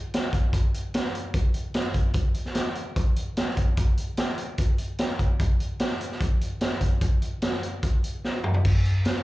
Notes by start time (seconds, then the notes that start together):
0.14 snare, closed hi-hat
0.33 kick, closed hi-hat
0.53 kick, closed hi-hat
0.74 closed hi-hat
0.94 snare, closed hi-hat
1.15 closed hi-hat
1.34 kick, closed hi-hat
1.54 closed hi-hat
1.74 snare, closed hi-hat
1.94 kick, closed hi-hat
2.14 kick, closed hi-hat
2.34 closed hi-hat
2.45 snare
2.55 snare, closed hi-hat
2.75 closed hi-hat
2.96 kick, closed hi-hat
3.16 closed hi-hat
3.37 snare, closed hi-hat
3.57 kick, closed hi-hat
3.77 kick, closed hi-hat
3.97 closed hi-hat
4.17 snare, closed hi-hat
4.38 closed hi-hat
4.58 kick, closed hi-hat
4.78 closed hi-hat
4.98 snare, closed hi-hat
5.19 kick, closed hi-hat
5.40 kick, closed hi-hat
5.60 closed hi-hat
5.79 snare, closed hi-hat
6.01 closed hi-hat
6.12 snare
6.21 kick, closed hi-hat
6.41 closed hi-hat
6.61 snare, closed hi-hat
6.81 kick, closed hi-hat
7.01 kick, closed hi-hat
7.22 closed hi-hat
7.42 snare, closed hi-hat
7.63 closed hi-hat
7.83 kick, closed hi-hat
8.04 closed hi-hat
8.25 snare
8.44 mid tom
8.54 floor tom
8.65 kick, crash
8.85 closed hi-hat
9.05 snare, closed hi-hat